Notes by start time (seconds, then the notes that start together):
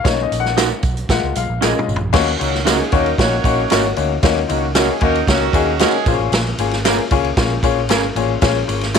0.04 B1 A#3 C#4 D#4 C#5, kick, snare, closed hi-hat, tambourine
0.23 D#5
0.32 A#1, closed hi-hat, tambourine
0.40 F#5
0.45 snare
0.57 D#4 F#4 A#4, snare, clap, closed hi-hat, tambourine
0.83 B1, kick, closed hi-hat, tambourine
0.97 closed hi-hat
1.09 A#1 G#3 A#3 F4 F#5, kick, snare, closed hi-hat, tambourine
1.23 C#2
1.35 B1 F5, closed hi-hat, tambourine
1.50 A#1
1.61 A#1 G#3 C#4 F4 G#4 A#4 D#5, snare, clap, tambourine
1.79 mid tom
1.88 G#1, tambourine
1.96 floor tom
2.01 A#1
2.13 D#2 D#3 A#3 C#4 D#4 F#4 C#5, kick, snare, crash, tambourine
2.39 C#2 D#3 F#3 A#3 C#4 D#4 F#4 C#5, ride, tambourine
2.55 snare
2.65 G#3 A#3 C#4 D#4 F4 F#4 G#4 A#4 C#5, snare, clap, ride, tambourine
2.92 D#2 F#3 A#3 C#4 D#4 F#4 A#4 C#5, kick, ride, tambourine
3.06 ride
3.18 A#1 A#3 C#4 D#4 F#4 C#5, kick, snare, ride
3.44 A#1 A#3 C#4 D#4 F#4 C#5, kick, ride, tambourine
3.70 G#1 A#3 C#4 D#4 F#4 A#4 C#5, snare, clap, ride, tambourine
3.97 D2 A#3 C#4 D#4 F#4 C#5, ride, tambourine
4.23 D#2 D#3 A#3 C#4 D#4 F#4 C#5, kick, snare, ride, tambourine
4.48 C#2 D#3 F#3 A#3 C#4 D#4 F#4 C#5, ride, tambourine
4.75 G#3 A#3 C#4 D#4 F4 F#4 G#4 A#4 C#5, snare, clap, ride, tambourine
5.01 D#2 F#3 A#3 C#4 D#4 F#4 A#4 C#5, kick, ride
5.15 ride
5.27 C#2 D#3 F#3 A#3 C#4 D#4 F#4 C#5, kick, snare, ride, tambourine
5.53 D#2 A#3 C#4 D#4 F#4 G#4, kick, ride, tambourine
5.79 F3 G#3 A#3 C#4 D#4 F#4 G#4 A#4 C#5, snare, clap, ride, tambourine
6.06 A#1 A#2 A#3 C#4 F4 G#4 C5, kick, ride, tambourine
6.14 C#5
6.19 A1
6.32 A#1, snare, ride, tambourine
6.58 G#1 A#3 C#4 F4 G#4 C#5, ride, tambourine
6.71 snare, ride
6.85 A#3 C#4 F4 G#4 A#4, snare, clap, ride, tambourine
7.11 C#2 A#3 C#4 F4 G#4 C#5, kick, ride, tambourine
7.25 ride
7.37 A#1 A#3 C#4 F4 G#4 C#5, kick, snare, ride
7.63 A#1 A#3 C#4 F4 G#4 C#5, kick, ride, tambourine
7.89 G#1 A#3 C#4 F4 G#4 A#4 C#5, snare, clap, ride, tambourine
8.15 A1 A#2 A#3 C#4 F4 G#4 C#5, ride, tambourine
8.42 A#1 A#3 C#4 F4 G#4 C#5, kick, snare, ride, tambourine
8.68 G#1 A#3 C#4 F4 G#4 C#5, ride, tambourine
8.81 snare, ride
8.95 A#3 C#4 F4 G#4 C#5, snare, clap, ride, tambourine